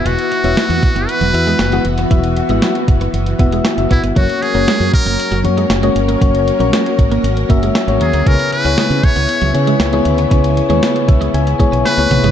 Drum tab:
HH |xxxxxxxxxxxxxxxx|xxxxxxxxxxxxxxxx|xxxxxxxxxxxxxxxx|xxxxxxxxxxxxxxxx|
SD |----o-------o---|----o-------o---|----o-------o---|----o-------o---|
T1 |----------------|----------------|----------------|----------------|
T2 |----------------|----------------|----------------|----------------|
FT |----------------|----------------|----------------|----------------|
BD |------o---------|o-----o---o---o-|o-----o---------|o-----o---o-----|

HH |xxxxxxxxxxxxxxxx|xxxxxxxxxxxxxxxx|
SD |----o-------o---|----o-------o---|
T1 |----------------|-------------o--|
T2 |----------------|--------------o-|
FT |----------------|---------------o|
BD |o-----o---------|o-----o---o-----|